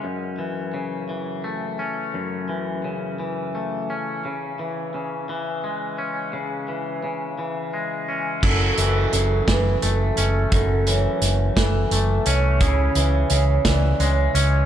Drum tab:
CC |------|------|------|------|
HH |------|------|------|------|
SD |------|------|------|------|
BD |------|------|------|------|

CC |x-----|------|------|
HH |-xxxxx|xxxxxx|xxxxxx|
SD |---o--|---o--|---o--|
BD |o--o--|o--o--|o--o--|